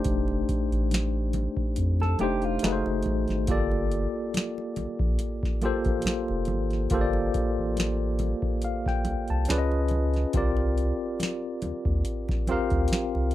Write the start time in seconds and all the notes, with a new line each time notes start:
Already playing: A3 D4 D#4 G4 C5
0.04 F1, kick, closed hi-hat, low conga
0.28 muted conga
0.49 kick, closed hi-hat
0.72 A1, closed hi-hat
0.91 snare, closed hi-hat, high conga
1.33 closed hi-hat, high conga, low conga
1.57 kick
1.76 F2, closed hi-hat, muted conga
2.00 A4, snare, muted conga
2.19 F1 A3 D4 D#4 G4, closed hi-hat, high conga
2.23 C5
2.42 F4, closed hi-hat
2.59 A3, closed hi-hat
2.63 F#1 D#4 F#4 G#4 B4, snare, muted conga, high conga
2.72 C5
2.86 F#1, muted conga
3.03 A1, closed hi-hat, high conga, low conga
3.28 G#1, snare, closed hi-hat, high conga
3.47 G1 A#3 F4 G4 A4, kick, closed hi-hat, muted conga, low conga
3.51 D5
3.71 muted conga
3.91 closed hi-hat
4.34 snare, closed hi-hat, muted conga, high conga
4.58 muted conga
4.76 A#1, closed hi-hat, high conga, low conga
4.99 A#1, kick
5.19 closed hi-hat, muted conga
5.43 kick, snare
5.62 A1 A#3 F4 G4 A4, closed hi-hat, high conga
5.66 C5
5.85 A1, kick, closed hi-hat
6.02 closed hi-hat, muted conga, high conga
6.07 snare
6.28 F1, muted conga
6.45 closed hi-hat, high conga, low conga
6.50 G#1
6.71 snare, closed hi-hat
6.90 G1 A#3 F4 G4 A4, kick, closed hi-hat, low conga
6.94 C5
7.01 D5
7.13 muted conga
7.34 kick, closed hi-hat
7.59 A1
7.77 snare, closed hi-hat, high conga
8.19 closed hi-hat, high conga, low conga
8.42 kick
8.62 F5, closed hi-hat, muted conga
8.86 G5, kick, snare
9.05 C2, closed hi-hat, high conga
9.28 C2 A5, closed hi-hat
9.45 C#4, closed hi-hat, muted conga, high conga
9.49 C#2 F4 G#4 B4 D5, snare
9.58 D#5
9.71 muted conga
9.88 closed hi-hat, high conga, low conga
10.14 snare, closed hi-hat
10.33 C2 C4 F4 G4 A#4, kick, closed hi-hat, muted conga, low conga
10.38 D5
10.57 muted conga
10.78 closed hi-hat
11.20 snare, closed hi-hat, muted conga, high conga
11.62 D#2, closed hi-hat, high conga, low conga
11.85 D#2, kick
12.05 closed hi-hat
12.29 kick, snare, muted conga
12.47 D2 C4 F4 G4 A#4, closed hi-hat, high conga
12.52 F5
12.70 D2, kick, closed hi-hat
12.88 closed hi-hat
12.92 snare, muted conga, high conga
13.15 C2, muted conga
13.31 closed hi-hat